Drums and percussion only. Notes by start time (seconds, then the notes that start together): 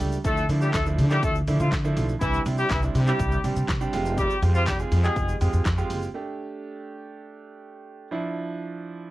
0.00 open hi-hat, shaker
0.12 shaker
0.24 kick, closed hi-hat, shaker
0.37 shaker
0.49 open hi-hat, shaker
0.61 shaker
0.74 kick, snare, clap, closed hi-hat, shaker
0.86 shaker
0.98 open hi-hat, shaker
1.11 clap, shaker
1.23 kick, closed hi-hat, shaker
1.35 shaker
1.47 open hi-hat, shaker
1.60 shaker
1.72 kick, snare, clap, closed hi-hat, shaker
1.84 shaker
1.97 open hi-hat, shaker
2.09 shaker
2.21 kick, closed hi-hat, shaker
2.34 shaker
2.46 open hi-hat, shaker
2.58 shaker
2.70 kick, snare, clap, closed hi-hat, shaker
2.82 shaker
2.95 open hi-hat, shaker
3.07 clap, shaker
3.19 kick, closed hi-hat, shaker
3.32 shaker
3.44 open hi-hat, shaker
3.56 shaker
3.69 kick, snare, clap, closed hi-hat, shaker
3.81 shaker
3.93 open hi-hat, shaker
4.05 shaker
4.18 kick, closed hi-hat, shaker
4.30 shaker
4.42 open hi-hat, shaker
4.55 shaker
4.67 kick, snare, clap, closed hi-hat, shaker
4.79 shaker
4.92 open hi-hat, shaker
5.04 clap, shaker
5.16 kick, closed hi-hat, shaker
5.29 shaker
5.41 open hi-hat, shaker
5.53 shaker
5.65 kick, snare, clap, closed hi-hat, shaker
5.78 shaker
5.90 open hi-hat, shaker
6.02 shaker